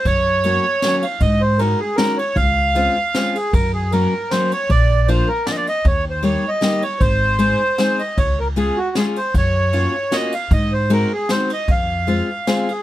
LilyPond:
<<
  \new Staff \with { instrumentName = "Accordion" } { \time 3/4 \key des \major \tempo 4 = 155 des''2~ des''8 f''8 | ees''8 c''8 bes'8 aes'8 bes'8 des''8 | f''2~ f''8 aes'8 | bes'8 aes'8 bes'4 c''8 des''8 |
d''4 c''8 bes'8 d''32 ees''32 d''16 ees''8 | \tuplet 3/2 { des''8. r16 c''8 des''4 ees''8~ } ees''8 des''8 | c''2~ c''8 ees''8 | des''8 bes'8 aes'8 ges'8 aes'8 c''8 |
des''2 ees''8 f''8 | ees''8 c''8 bes'8 aes'8 c''8 ees''8 | f''2~ f''8 aes'8 | }
  \new Staff \with { instrumentName = "Steel-string acoustic guitar" } { \time 3/4 \key des \major r4 <ges bes des' ges'>8 r8 <ges bes des' ges'>8 r8 | r4 <aes des' ees' ges'>8 r8 <aes des' ees' ges'>8 r8 | r4 <aes c' des' f'>8 r8 <aes c' des' f'>8 r8 | r4 <ges bes des' ges'>8 r8 <ges bes des' ges'>8 r8 |
r4 <f bes d' f'>8 r8 <f bes d' f'>8 r8 | r4 <g bes ees' g'>8 r8 <g bes ees' g'>8 r8 | r4 <aes c' ees' aes'>8 r8 <aes c' ees' aes'>8 r8 | r4 <aes des' f' aes'>8 r8 <aes des' f' aes'>8 r8 |
r4 <bes des' f' ges'>8 r8 <bes des' f' ges'>8 r8 | r4 <aes c' ees' ges'>8 r8 <aes c' ees' ges'>8 r8 | r4 <aes c' f' aes'>8 r8 <aes c' f' aes'>8 r8 | }
  \new Staff \with { instrumentName = "Upright bass" } { \clef bass \time 3/4 \key des \major ges,2 r4 | aes,2 r4 | des,2 r4 | ges,2 r4 |
bes,,2 r4 | ees,2 r4 | aes,,2 r4 | des,2 r4 |
ges,2 r4 | aes,2 r4 | f,2 r4 | }
  \new DrumStaff \with { instrumentName = "Drums" } \drummode { \time 3/4 <bd cymr>4 cymr4 <cymr sn>8 cymr8 | <bd cymr>4 cymr4 <cymr sn>8 cymr8 | <bd cymr>4 cymr4 <cymr sn>8 cymr8 | <bd cymr>4 cymr4 <cymr sn>8 cymr8 |
<bd cymr>4 cymr4 <cymr sn>8 cymr8 | <bd cymr>4 cymr4 <cymr sn>8 cymr8 | <bd cymr>4 cymr4 <cymr sn>8 cymr8 | <bd cymr>4 cymr4 <cymr sn>8 cymr8 |
<bd cymr>4 cymr4 <cymr sn>8 cymr8 | <bd cymr>4 cymr4 <cymr sn>8 cymr8 | <bd cymr>4 cymr4 <cymr sn>8 cymr8 | }
>>